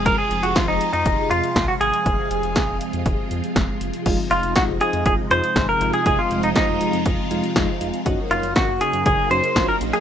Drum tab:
CC |----------------|----------------|x---------------|----------------|
HH |x-xxx-xxx-xxx-xx|x-xxx-xxx-xxx-xx|x-xxx-xxx-xxx-xx|x-xxx-xxx-xxx-xx|
SD |----o-------o---|----o-------o---|----o-------o---|----o-------o---|
BD |o---o---o---o---|o---o---o---o---|o---o---o---o---|o---o---o---o---|

CC |----------------|
HH |x-xxx-xxx-xxx-xx|
SD |----o-------o---|
BD |o---o---o---o---|